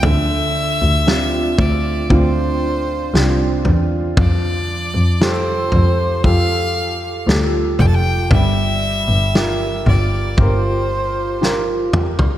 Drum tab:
SD |----o-------o---|----o-------o---|----o-------o---|
T2 |----------------|----------------|--------------o-|
FT |o-----o-o-----o-|o-----o-o-----o-|o-----o-o------o|
BD |------o-o-------|o-------o-------|--------o-------|